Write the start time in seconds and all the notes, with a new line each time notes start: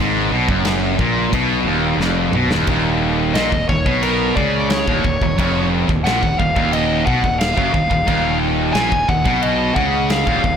0.00 G#1 G#2
0.31 B1 B2
0.48 F#1 F#2, kick
0.65 snare, crash
0.98 A#1 A#2, kick
1.32 B1 B2, kick, crash
1.65 D#1 D#2
1.97 F1, snare
2.02 F2
2.31 B1, mid tom
2.35 B2
2.48 D#1, snare
2.52 D#2
2.67 D#1 D#2, kick, crash
3.34 A#1 A#2 D#5, snare, crash
3.52 D#1 D#2, kick
3.69 D#1 D#2 C#5, kick
3.86 B1 B2, kick
4.03 A#4, crash
4.35 C#2 C#3 D5, kick
4.70 C#5, snare, crash
4.87 D#1 D#2, kick
5.04 D#1 D#2, kick
5.21 D#1 D#2, kick
5.38 F1 F2, kick, crash
5.89 D#1 D#2, kick
6.04 A#1 A#2 F#5, snare, crash
6.22 D#1 D#2, kick
6.39 D#1 D#2 F5, kick
6.55 D#1 D#2, kick
6.73 D#5, crash
7.06 B1 B2 F#5, kick
7.23 D#1 D#2, kick
7.39 F5, snare, crash
7.57 F#1 F#2, kick
7.74 D#1 D#2, kick
7.90 D#1 D#2, kick
8.07 D#1 D#2, kick, crash
8.73 A#1 A#2 G#5, snare, crash
8.92 D#1 D#2, kick
9.08 D#1 D#2 F#5, kick
9.25 B1 B2, kick
9.43 D#5, crash
9.75 C#2 C#3 F#5, kick
10.10 F5, snare, crash
10.26 D#1 D#2, kick
10.44 D#1 D#2, kick